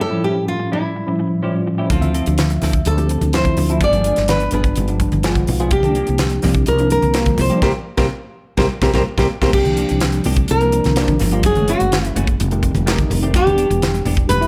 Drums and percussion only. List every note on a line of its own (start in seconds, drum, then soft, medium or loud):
1.90 kick loud
1.90 closed hi-hat medium
2.02 closed hi-hat soft
2.02 high conga medium
2.14 closed hi-hat soft
2.26 closed hi-hat soft
2.38 snare loud
2.38 closed hi-hat medium
2.38 high conga soft
2.50 closed hi-hat soft
2.62 snare soft
2.62 open hi-hat medium
2.62 low conga medium
2.73 kick medium
2.73 closed hi-hat soft
2.85 closed hi-hat medium
2.98 closed hi-hat soft
3.09 closed hi-hat medium
3.21 closed hi-hat soft
3.21 high conga medium
3.33 snare medium
3.33 closed hi-hat medium
3.45 kick medium
3.45 closed hi-hat soft
3.45 high conga medium
3.57 open hi-hat medium
3.57 low conga medium
3.69 closed hi-hat soft
3.81 kick loud
3.81 closed hi-hat medium
3.93 closed hi-hat soft
3.93 high conga medium
4.04 closed hi-hat medium
4.16 snare soft
4.16 closed hi-hat soft
4.28 snare medium
4.28 closed hi-hat medium
4.28 high conga soft
4.40 closed hi-hat soft
4.51 closed hi-hat medium
4.51 low conga medium
4.64 kick medium
4.64 closed hi-hat soft
4.76 closed hi-hat medium
4.88 closed hi-hat soft
5.00 kick medium
5.00 closed hi-hat soft
5.12 closed hi-hat soft
5.12 high conga medium
5.23 snare medium
5.23 closed hi-hat medium
5.35 kick medium
5.35 closed hi-hat soft
5.35 high conga medium
5.47 open hi-hat medium
5.47 low conga medium
5.60 closed hi-hat soft
5.71 kick loud
5.71 closed hi-hat medium
5.83 closed hi-hat soft
5.83 high conga medium
5.95 closed hi-hat soft
6.07 closed hi-hat soft
6.18 snare loud
6.18 closed hi-hat medium
6.18 high conga medium
6.30 closed hi-hat soft
6.42 snare soft
6.42 open hi-hat medium
6.42 low conga medium
6.54 kick medium
6.54 closed hi-hat soft
6.66 closed hi-hat medium
6.78 closed hi-hat soft
6.90 closed hi-hat medium
7.02 closed hi-hat soft
7.02 high conga medium
7.14 snare loud
7.14 closed hi-hat medium
7.26 kick medium
7.26 closed hi-hat soft
7.26 high conga medium
7.38 open hi-hat medium
7.38 low conga medium
7.50 closed hi-hat soft
7.62 kick medium
7.62 snare medium
7.62 low conga medium
7.98 kick medium
7.98 snare medium
7.98 low conga medium
8.58 kick medium
8.58 snare medium
8.58 low conga medium
8.82 kick medium
8.82 snare medium
8.82 low conga medium
8.94 kick medium
8.94 snare medium
8.94 low conga medium
9.18 kick medium
9.18 snare medium
9.18 low conga medium
9.42 kick medium
9.42 snare medium
9.42 low conga medium
9.53 kick loud
9.53 crash medium
9.65 closed hi-hat soft
9.65 high conga medium
9.77 closed hi-hat medium
9.89 closed hi-hat soft
10.00 snare loud
10.00 closed hi-hat medium
10.00 high conga medium
10.12 closed hi-hat soft
10.24 open hi-hat medium
10.24 low conga medium
10.36 kick medium
10.36 closed hi-hat soft
10.48 closed hi-hat medium
10.61 closed hi-hat soft
10.72 closed hi-hat medium
10.84 snare soft
10.84 closed hi-hat soft
10.84 high conga medium
10.96 snare loud
10.96 closed hi-hat medium
11.08 kick medium
11.08 closed hi-hat soft
11.08 high conga medium
11.19 snare soft
11.19 open hi-hat medium
11.19 low conga medium
11.31 closed hi-hat soft
11.43 kick loud
11.43 closed hi-hat medium
11.55 closed hi-hat soft
11.55 high conga medium
11.68 closed hi-hat medium
11.80 closed hi-hat soft
11.92 snare loud
11.92 closed hi-hat medium
11.92 high conga medium
12.05 closed hi-hat soft
12.16 closed hi-hat medium
12.16 low conga medium
12.27 kick medium
12.27 closed hi-hat soft
12.40 closed hi-hat medium
12.51 closed hi-hat soft
12.63 kick medium
12.63 closed hi-hat medium
12.75 closed hi-hat soft
12.75 high conga medium
12.87 snare loud
12.87 closed hi-hat medium
12.98 kick medium
12.98 closed hi-hat soft
12.98 high conga medium
13.10 open hi-hat medium
13.10 low conga medium
13.23 closed hi-hat soft
13.34 kick loud
13.34 closed hi-hat medium
13.47 closed hi-hat soft
13.47 high conga medium
13.58 closed hi-hat medium
13.71 closed hi-hat soft
13.82 snare loud
13.82 closed hi-hat medium
13.82 high conga medium
13.95 closed hi-hat soft
14.05 open hi-hat medium
14.05 low conga medium
14.17 kick medium
14.17 closed hi-hat soft
14.30 closed hi-hat medium
14.42 closed hi-hat soft